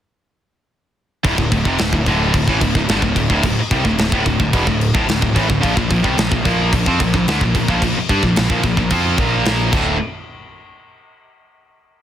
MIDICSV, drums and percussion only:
0, 0, Header, 1, 2, 480
1, 0, Start_track
1, 0, Key_signature, -1, "minor"
1, 0, Tempo, 547945
1, 1092, Time_signature, 4, 2, 24, 8
1, 10530, End_track
2, 0, Start_track
2, 0, Title_t, "Drums"
2, 1091, Note_on_c, 9, 36, 104
2, 1092, Note_on_c, 9, 49, 78
2, 1179, Note_off_c, 9, 36, 0
2, 1179, Note_off_c, 9, 49, 0
2, 1210, Note_on_c, 9, 36, 89
2, 1297, Note_off_c, 9, 36, 0
2, 1330, Note_on_c, 9, 36, 86
2, 1331, Note_on_c, 9, 49, 59
2, 1418, Note_off_c, 9, 36, 0
2, 1418, Note_off_c, 9, 49, 0
2, 1448, Note_on_c, 9, 36, 86
2, 1536, Note_off_c, 9, 36, 0
2, 1563, Note_on_c, 9, 49, 82
2, 1573, Note_on_c, 9, 38, 104
2, 1651, Note_off_c, 9, 49, 0
2, 1661, Note_off_c, 9, 38, 0
2, 1688, Note_on_c, 9, 36, 86
2, 1776, Note_off_c, 9, 36, 0
2, 1808, Note_on_c, 9, 36, 78
2, 1808, Note_on_c, 9, 49, 61
2, 1895, Note_off_c, 9, 49, 0
2, 1896, Note_off_c, 9, 36, 0
2, 2049, Note_on_c, 9, 36, 96
2, 2049, Note_on_c, 9, 49, 85
2, 2137, Note_off_c, 9, 36, 0
2, 2137, Note_off_c, 9, 49, 0
2, 2169, Note_on_c, 9, 36, 81
2, 2257, Note_off_c, 9, 36, 0
2, 2289, Note_on_c, 9, 36, 83
2, 2291, Note_on_c, 9, 49, 67
2, 2377, Note_off_c, 9, 36, 0
2, 2379, Note_off_c, 9, 49, 0
2, 2410, Note_on_c, 9, 36, 85
2, 2497, Note_off_c, 9, 36, 0
2, 2528, Note_on_c, 9, 49, 75
2, 2538, Note_on_c, 9, 38, 110
2, 2616, Note_off_c, 9, 49, 0
2, 2625, Note_off_c, 9, 38, 0
2, 2648, Note_on_c, 9, 36, 87
2, 2735, Note_off_c, 9, 36, 0
2, 2768, Note_on_c, 9, 36, 85
2, 2772, Note_on_c, 9, 49, 64
2, 2856, Note_off_c, 9, 36, 0
2, 2859, Note_off_c, 9, 49, 0
2, 2889, Note_on_c, 9, 36, 86
2, 2977, Note_off_c, 9, 36, 0
2, 3008, Note_on_c, 9, 36, 94
2, 3008, Note_on_c, 9, 49, 84
2, 3095, Note_off_c, 9, 49, 0
2, 3096, Note_off_c, 9, 36, 0
2, 3250, Note_on_c, 9, 36, 107
2, 3254, Note_on_c, 9, 49, 57
2, 3338, Note_off_c, 9, 36, 0
2, 3342, Note_off_c, 9, 49, 0
2, 3371, Note_on_c, 9, 36, 87
2, 3459, Note_off_c, 9, 36, 0
2, 3490, Note_on_c, 9, 49, 72
2, 3500, Note_on_c, 9, 38, 108
2, 3578, Note_off_c, 9, 49, 0
2, 3588, Note_off_c, 9, 38, 0
2, 3611, Note_on_c, 9, 36, 107
2, 3698, Note_off_c, 9, 36, 0
2, 3731, Note_on_c, 9, 36, 82
2, 3734, Note_on_c, 9, 49, 54
2, 3819, Note_off_c, 9, 36, 0
2, 3822, Note_off_c, 9, 49, 0
2, 3852, Note_on_c, 9, 36, 85
2, 3940, Note_off_c, 9, 36, 0
2, 3971, Note_on_c, 9, 36, 94
2, 3972, Note_on_c, 9, 49, 77
2, 4059, Note_off_c, 9, 36, 0
2, 4060, Note_off_c, 9, 49, 0
2, 4091, Note_on_c, 9, 36, 95
2, 4178, Note_off_c, 9, 36, 0
2, 4215, Note_on_c, 9, 49, 60
2, 4303, Note_off_c, 9, 49, 0
2, 4333, Note_on_c, 9, 36, 108
2, 4421, Note_off_c, 9, 36, 0
2, 4456, Note_on_c, 9, 49, 77
2, 4465, Note_on_c, 9, 38, 112
2, 4543, Note_off_c, 9, 49, 0
2, 4553, Note_off_c, 9, 38, 0
2, 4575, Note_on_c, 9, 36, 90
2, 4663, Note_off_c, 9, 36, 0
2, 4695, Note_on_c, 9, 36, 87
2, 4701, Note_on_c, 9, 49, 62
2, 4783, Note_off_c, 9, 36, 0
2, 4788, Note_off_c, 9, 49, 0
2, 4815, Note_on_c, 9, 36, 87
2, 4903, Note_off_c, 9, 36, 0
2, 4935, Note_on_c, 9, 36, 87
2, 4941, Note_on_c, 9, 49, 73
2, 5023, Note_off_c, 9, 36, 0
2, 5028, Note_off_c, 9, 49, 0
2, 5054, Note_on_c, 9, 36, 91
2, 5141, Note_off_c, 9, 36, 0
2, 5173, Note_on_c, 9, 36, 80
2, 5175, Note_on_c, 9, 49, 57
2, 5261, Note_off_c, 9, 36, 0
2, 5262, Note_off_c, 9, 49, 0
2, 5293, Note_on_c, 9, 36, 88
2, 5381, Note_off_c, 9, 36, 0
2, 5413, Note_on_c, 9, 49, 74
2, 5422, Note_on_c, 9, 38, 105
2, 5500, Note_off_c, 9, 49, 0
2, 5510, Note_off_c, 9, 38, 0
2, 5533, Note_on_c, 9, 36, 92
2, 5620, Note_off_c, 9, 36, 0
2, 5653, Note_on_c, 9, 36, 82
2, 5653, Note_on_c, 9, 49, 65
2, 5741, Note_off_c, 9, 36, 0
2, 5741, Note_off_c, 9, 49, 0
2, 5893, Note_on_c, 9, 36, 89
2, 5896, Note_on_c, 9, 49, 81
2, 5981, Note_off_c, 9, 36, 0
2, 5983, Note_off_c, 9, 49, 0
2, 6012, Note_on_c, 9, 36, 87
2, 6100, Note_off_c, 9, 36, 0
2, 6133, Note_on_c, 9, 36, 92
2, 6136, Note_on_c, 9, 49, 66
2, 6220, Note_off_c, 9, 36, 0
2, 6224, Note_off_c, 9, 49, 0
2, 6253, Note_on_c, 9, 36, 78
2, 6340, Note_off_c, 9, 36, 0
2, 6375, Note_on_c, 9, 49, 76
2, 6385, Note_on_c, 9, 38, 113
2, 6463, Note_off_c, 9, 49, 0
2, 6472, Note_off_c, 9, 38, 0
2, 6492, Note_on_c, 9, 36, 90
2, 6580, Note_off_c, 9, 36, 0
2, 6612, Note_on_c, 9, 36, 88
2, 6617, Note_on_c, 9, 49, 67
2, 6699, Note_off_c, 9, 36, 0
2, 6704, Note_off_c, 9, 49, 0
2, 6731, Note_on_c, 9, 36, 92
2, 6819, Note_off_c, 9, 36, 0
2, 6850, Note_on_c, 9, 36, 97
2, 6854, Note_on_c, 9, 49, 84
2, 6938, Note_off_c, 9, 36, 0
2, 6942, Note_off_c, 9, 49, 0
2, 7090, Note_on_c, 9, 36, 106
2, 7091, Note_on_c, 9, 49, 60
2, 7178, Note_off_c, 9, 36, 0
2, 7179, Note_off_c, 9, 49, 0
2, 7208, Note_on_c, 9, 36, 78
2, 7296, Note_off_c, 9, 36, 0
2, 7325, Note_on_c, 9, 49, 74
2, 7334, Note_on_c, 9, 38, 105
2, 7412, Note_off_c, 9, 49, 0
2, 7422, Note_off_c, 9, 38, 0
2, 7445, Note_on_c, 9, 36, 103
2, 7532, Note_off_c, 9, 36, 0
2, 7563, Note_on_c, 9, 49, 56
2, 7565, Note_on_c, 9, 36, 81
2, 7650, Note_off_c, 9, 49, 0
2, 7652, Note_off_c, 9, 36, 0
2, 7684, Note_on_c, 9, 36, 87
2, 7772, Note_off_c, 9, 36, 0
2, 7800, Note_on_c, 9, 49, 82
2, 7804, Note_on_c, 9, 36, 93
2, 7887, Note_off_c, 9, 49, 0
2, 7891, Note_off_c, 9, 36, 0
2, 8040, Note_on_c, 9, 49, 60
2, 8043, Note_on_c, 9, 36, 107
2, 8127, Note_off_c, 9, 49, 0
2, 8131, Note_off_c, 9, 36, 0
2, 8282, Note_on_c, 9, 49, 70
2, 8291, Note_on_c, 9, 38, 108
2, 8369, Note_off_c, 9, 49, 0
2, 8379, Note_off_c, 9, 38, 0
2, 8522, Note_on_c, 9, 36, 106
2, 8522, Note_on_c, 9, 57, 91
2, 8609, Note_off_c, 9, 57, 0
2, 8610, Note_off_c, 9, 36, 0
2, 10530, End_track
0, 0, End_of_file